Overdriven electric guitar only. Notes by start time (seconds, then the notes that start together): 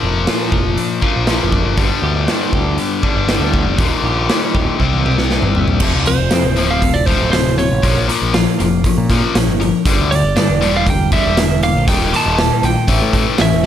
Already playing: A#2 F3 A#3
1.01 A#2 F3 A#3
1.28 A#2 F3 A#3
1.76 G2 D3 G3
3.02 G2 D3 G3
3.27 G2 D3 G3
3.77 D#2 A#2 D#3
4.79 C3 G3 C4
5.81 F2 C3 F3
6.06 F2 C3
6.31 F2 C3
6.56 F2 C3 F3
6.82 F2 C3
7.06 F2 C3 F3
7.33 F2 C3
7.58 F2 C3
7.82 A#2 F3 A#3
8.08 A#2 F3 A#3
8.34 A#2 F3
8.60 A#2 F3
8.86 A#2 F3
9.10 A#2 F3 A#3
9.35 A#2 F3
9.60 A#2 F3
9.86 G2 D3 G3
10.10 G2 D3
10.36 G2 D3
10.61 G2 D3 G3
10.87 G2 D3
11.12 G2 D3 G3
11.39 G2 D3
11.63 G2 D3
11.88 D#2 A#2 D#3
12.11 D#2 A#2 D#3
12.38 D#2 A#2
12.63 D#2 A#2
12.88 A2 E3 A3
13.14 A2 E3 A3
13.39 A2 E3